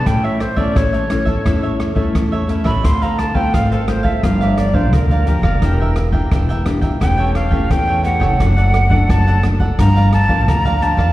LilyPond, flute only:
\new Staff \with { instrumentName = "Flute" } { \time 4/4 \key d \minor \tempo 4 = 86 g''16 e''16 c''16 d''16 cis''4. r4 r16 b''16 | c'''16 bes''16 a''16 g''16 f''16 a'16 c''16 e''16 f''16 e''16 d''16 c''16 bes'4~ | bes'4 r4 g''8 f''8 g''8 fis''8~ | fis''4 a''8 r8 bes''8 a''8 bes''8 a''8 | }